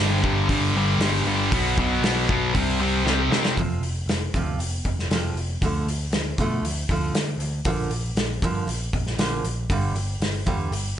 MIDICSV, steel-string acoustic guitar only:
0, 0, Header, 1, 2, 480
1, 0, Start_track
1, 0, Tempo, 511509
1, 1423, Time_signature, 4, 2, 24, 8
1, 10314, End_track
2, 0, Start_track
2, 0, Title_t, "Steel-string acoustic guitar"
2, 0, Program_c, 0, 25
2, 3362, Note_on_c, 0, 41, 70
2, 3364, Note_on_c, 0, 48, 86
2, 3367, Note_on_c, 0, 53, 81
2, 3578, Note_off_c, 0, 41, 0
2, 3580, Note_off_c, 0, 48, 0
2, 3581, Note_off_c, 0, 53, 0
2, 3597, Note_on_c, 0, 41, 66
2, 3601, Note_on_c, 0, 48, 71
2, 3807, Note_off_c, 0, 41, 0
2, 3809, Note_off_c, 0, 48, 0
2, 3845, Note_on_c, 0, 41, 72
2, 3848, Note_on_c, 0, 48, 75
2, 4051, Note_off_c, 0, 41, 0
2, 4052, Note_off_c, 0, 48, 0
2, 4081, Note_on_c, 0, 41, 81
2, 4089, Note_on_c, 0, 48, 81
2, 4093, Note_on_c, 0, 53, 94
2, 4296, Note_off_c, 0, 41, 0
2, 4303, Note_off_c, 0, 48, 0
2, 4305, Note_off_c, 0, 53, 0
2, 4307, Note_on_c, 0, 41, 70
2, 4316, Note_on_c, 0, 48, 67
2, 4523, Note_off_c, 0, 41, 0
2, 4527, Note_off_c, 0, 48, 0
2, 4559, Note_on_c, 0, 41, 58
2, 4565, Note_on_c, 0, 48, 62
2, 4769, Note_off_c, 0, 41, 0
2, 4772, Note_off_c, 0, 48, 0
2, 4794, Note_on_c, 0, 41, 74
2, 4803, Note_on_c, 0, 48, 78
2, 4811, Note_on_c, 0, 53, 81
2, 5016, Note_off_c, 0, 41, 0
2, 5020, Note_off_c, 0, 48, 0
2, 5025, Note_off_c, 0, 53, 0
2, 5042, Note_on_c, 0, 41, 59
2, 5045, Note_on_c, 0, 48, 68
2, 5251, Note_off_c, 0, 41, 0
2, 5252, Note_off_c, 0, 48, 0
2, 5284, Note_on_c, 0, 50, 73
2, 5286, Note_on_c, 0, 53, 79
2, 5294, Note_on_c, 0, 57, 91
2, 5501, Note_off_c, 0, 50, 0
2, 5503, Note_off_c, 0, 53, 0
2, 5507, Note_off_c, 0, 57, 0
2, 5535, Note_on_c, 0, 53, 73
2, 5738, Note_off_c, 0, 53, 0
2, 5762, Note_on_c, 0, 50, 68
2, 5764, Note_on_c, 0, 53, 77
2, 5971, Note_off_c, 0, 50, 0
2, 5972, Note_off_c, 0, 53, 0
2, 5998, Note_on_c, 0, 50, 82
2, 6008, Note_on_c, 0, 53, 90
2, 6013, Note_on_c, 0, 57, 93
2, 6219, Note_off_c, 0, 50, 0
2, 6224, Note_off_c, 0, 53, 0
2, 6226, Note_off_c, 0, 57, 0
2, 6236, Note_on_c, 0, 53, 70
2, 6238, Note_on_c, 0, 50, 68
2, 6449, Note_off_c, 0, 50, 0
2, 6449, Note_off_c, 0, 53, 0
2, 6478, Note_on_c, 0, 50, 69
2, 6482, Note_on_c, 0, 53, 86
2, 6484, Note_on_c, 0, 57, 82
2, 6699, Note_off_c, 0, 50, 0
2, 6701, Note_off_c, 0, 53, 0
2, 6702, Note_off_c, 0, 57, 0
2, 6716, Note_on_c, 0, 50, 66
2, 6716, Note_on_c, 0, 53, 78
2, 6928, Note_off_c, 0, 50, 0
2, 6929, Note_off_c, 0, 53, 0
2, 6957, Note_on_c, 0, 50, 65
2, 6960, Note_on_c, 0, 53, 76
2, 7169, Note_off_c, 0, 50, 0
2, 7171, Note_off_c, 0, 53, 0
2, 7182, Note_on_c, 0, 46, 80
2, 7189, Note_on_c, 0, 50, 83
2, 7192, Note_on_c, 0, 53, 80
2, 7411, Note_off_c, 0, 46, 0
2, 7415, Note_off_c, 0, 50, 0
2, 7416, Note_off_c, 0, 53, 0
2, 7429, Note_on_c, 0, 46, 60
2, 7429, Note_on_c, 0, 50, 68
2, 7645, Note_off_c, 0, 46, 0
2, 7645, Note_off_c, 0, 50, 0
2, 7668, Note_on_c, 0, 46, 70
2, 7669, Note_on_c, 0, 50, 75
2, 7884, Note_off_c, 0, 46, 0
2, 7885, Note_off_c, 0, 50, 0
2, 7909, Note_on_c, 0, 46, 80
2, 7917, Note_on_c, 0, 50, 94
2, 7920, Note_on_c, 0, 53, 95
2, 8125, Note_off_c, 0, 46, 0
2, 8131, Note_off_c, 0, 50, 0
2, 8136, Note_on_c, 0, 46, 67
2, 8140, Note_off_c, 0, 53, 0
2, 8142, Note_on_c, 0, 50, 84
2, 8358, Note_off_c, 0, 46, 0
2, 8361, Note_off_c, 0, 50, 0
2, 8383, Note_on_c, 0, 46, 63
2, 8383, Note_on_c, 0, 50, 74
2, 8601, Note_off_c, 0, 46, 0
2, 8601, Note_off_c, 0, 50, 0
2, 8618, Note_on_c, 0, 46, 83
2, 8624, Note_on_c, 0, 50, 90
2, 8629, Note_on_c, 0, 53, 87
2, 8848, Note_off_c, 0, 46, 0
2, 8851, Note_off_c, 0, 50, 0
2, 8854, Note_off_c, 0, 53, 0
2, 8864, Note_on_c, 0, 46, 65
2, 8869, Note_on_c, 0, 50, 72
2, 9081, Note_off_c, 0, 46, 0
2, 9084, Note_off_c, 0, 50, 0
2, 9101, Note_on_c, 0, 43, 85
2, 9112, Note_on_c, 0, 50, 80
2, 9116, Note_on_c, 0, 55, 90
2, 9327, Note_off_c, 0, 43, 0
2, 9335, Note_off_c, 0, 50, 0
2, 9337, Note_off_c, 0, 55, 0
2, 9339, Note_on_c, 0, 43, 65
2, 9345, Note_on_c, 0, 50, 70
2, 9558, Note_off_c, 0, 43, 0
2, 9561, Note_off_c, 0, 50, 0
2, 9588, Note_on_c, 0, 43, 70
2, 9592, Note_on_c, 0, 50, 77
2, 9802, Note_off_c, 0, 43, 0
2, 9804, Note_off_c, 0, 50, 0
2, 9817, Note_on_c, 0, 43, 79
2, 9819, Note_on_c, 0, 50, 93
2, 9828, Note_on_c, 0, 55, 83
2, 10046, Note_off_c, 0, 43, 0
2, 10047, Note_off_c, 0, 50, 0
2, 10051, Note_off_c, 0, 55, 0
2, 10062, Note_on_c, 0, 43, 66
2, 10063, Note_on_c, 0, 50, 75
2, 10279, Note_off_c, 0, 43, 0
2, 10279, Note_off_c, 0, 50, 0
2, 10314, End_track
0, 0, End_of_file